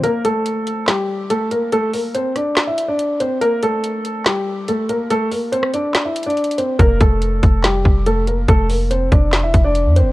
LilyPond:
<<
  \new Staff \with { instrumentName = "Grand piano" } { \time 4/4 \key g \dorian \tempo 4 = 142 <bes bes'>8 <a a'>4. <g g'>4 <a a'>8 <bes bes'>8 | <a a'>8 <bes bes'>8 <c' c''>8 <d' d''>8. <e' e''>8 <d' d''>8. <c' c''>8 | <bes bes'>8 <a a'>4. <g g'>4 <a a'>8 <bes bes'>8 | <a a'>8 <bes bes'>8 <c' c''>8 <d' d''>8. <e' e''>8 <d' d''>8. <c' c''>8 |
<bes bes'>8 <a a'>4. <g g'>4 <a a'>8 <bes bes'>8 | <a a'>8 <bes bes'>8 <c' c''>8 <d' d''>8. <e' e''>8 <d' d''>8. <c' c''>8 | }
  \new Staff \with { instrumentName = "808-style bass" } { \clef bass \time 4/4 \key g \dorian r1 | r1 | r1 | r1 |
f,,8 f,,4 f,,4 f,,4. | f,,4. f,,8. e,,16 f,,8. f,16. f,,16. | }
  \new DrumStaff \with { instrumentName = "Drums" } \drummode { \time 4/4 hh8 hh8 hh8 hh8 <hc hh sn>4 hh8 hh8 | hh8 hho8 hh8 <hh ss>8 <hc hh sn>8 hh8 hh8 hh8 | hh8 hh8 hh8 hh8 <hc hh sn>4 hh8 hh8 | hh8 hho8 hh16 ss16 hh8 \tuplet 3/2 { <hc hh sn>16 r16 r16 hh16 hh16 hh16 hh16 hh16 hh16 hh16 r16 r16 } |
<hh bd>8 <hh bd>8 hh8 <hh bd>8 <hc hh sn>8 bd8 hh8 hh8 | <hh bd>8 hho8 hh8 <hh bd ss>8 <hc hh sn>8 <hh bd>8 hh8 hh8 | }
>>